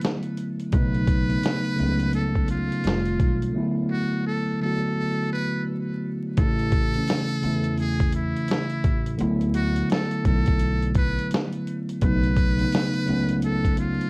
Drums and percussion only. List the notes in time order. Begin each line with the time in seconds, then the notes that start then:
0.01 snare, closed hi-hat
0.23 closed hi-hat
0.37 closed hi-hat
0.60 closed hi-hat
0.72 kick, closed hi-hat
0.94 closed hi-hat
1.07 kick, closed hi-hat
1.30 closed hi-hat
1.43 snare, closed hi-hat
1.65 closed hi-hat
1.79 closed hi-hat
2.00 closed hi-hat
2.13 closed hi-hat
2.36 kick, closed hi-hat
2.48 closed hi-hat
2.72 closed hi-hat
2.84 snare, closed hi-hat
3.06 closed hi-hat
3.20 kick, closed hi-hat
3.42 closed hi-hat
6.37 kick, closed hi-hat
6.59 closed hi-hat
6.72 kick, closed hi-hat
6.94 closed hi-hat
7.08 snare, closed hi-hat
7.29 closed hi-hat
7.43 closed hi-hat
7.64 closed hi-hat
7.77 closed hi-hat
8.00 kick, closed hi-hat
8.12 closed hi-hat
8.36 closed hi-hat
8.48 snare, closed hi-hat
8.70 closed hi-hat
8.84 kick, closed hi-hat
9.06 closed hi-hat
9.19 closed hi-hat
9.41 closed hi-hat
9.54 closed hi-hat
9.76 closed hi-hat
9.90 snare, closed hi-hat
10.11 closed hi-hat
10.25 kick, closed hi-hat
10.46 kick, closed hi-hat
10.60 closed hi-hat
10.83 closed hi-hat
10.95 kick, closed hi-hat
11.19 closed hi-hat
11.31 snare, closed hi-hat
11.52 closed hi-hat
11.67 closed hi-hat
11.89 closed hi-hat
12.01 kick, closed hi-hat
12.24 closed hi-hat
12.36 kick, closed hi-hat
12.59 closed hi-hat
12.72 snare, closed hi-hat
12.94 closed hi-hat
13.08 closed hi-hat
13.29 closed hi-hat
13.42 closed hi-hat
13.65 kick, closed hi-hat
13.77 closed hi-hat
14.01 closed hi-hat